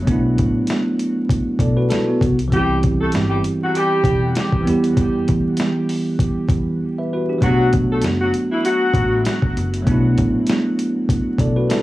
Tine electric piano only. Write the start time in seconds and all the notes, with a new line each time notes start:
0.02 F#3 A3
0.07 B3 D4
0.12 E4
1.61 A4 D5
1.77 F#4 B4
1.90 E4 A4
2.08 B3 F#4
2.48 E3 G3
2.52 C4 E4
2.57 G4
4.60 E3 G3
4.65 B3 E4
4.70 G4
6.98 B4 E5
7.13 F#4 B4
7.29 D4 G4
7.38 F#3 A3
7.43 B3 D4
7.48 F#4
9.82 F#3 A3
9.87 B3 D4
9.91 E4
11.40 A4 D5
11.56 F#4 B4
11.69 E4 A4